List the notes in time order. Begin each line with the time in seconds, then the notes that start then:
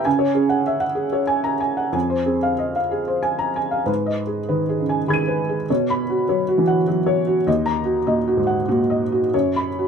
0.05 C#3 G#5
0.19 C#5
0.34 C#4 G#4
0.49 F#5
0.66 E5
0.80 F#5
0.95 G#4
1.13 C#5
1.27 G#5
1.44 A#5
1.60 G#5
1.77 F#5
1.92 F2 G#5
2.10 C5
2.26 C4 G#4
2.43 F5
2.59 D#5
2.76 F5
2.91 G#4
3.08 C5
3.23 G#5
3.39 A#5
3.56 G#5
3.71 F5
3.86 G#2 B4
4.06 D#5
4.27 G#4
4.49 D#3 B4
4.69 G#4
4.80 C#3
4.89 G#5
5.08 D#3 G#4 B5 G#6
5.13 D#7
5.28 B4
5.49 G#4
5.70 B2 C#5
5.90 B5
6.10 F#4
6.29 F#3 C#5
6.48 F#4
6.58 E3
6.67 F#5
6.87 F#3 F#4
7.06 C#5
7.27 F#4
7.47 D#2 D#5
7.66 A#5
7.85 F#4
8.06 A#2 D#5
8.27 F#4
8.37 G#2
8.47 F#5
8.68 A#2 F#4
8.90 D#5
9.12 F#4
9.34 F#2 C#5
9.56 B5
9.79 F#4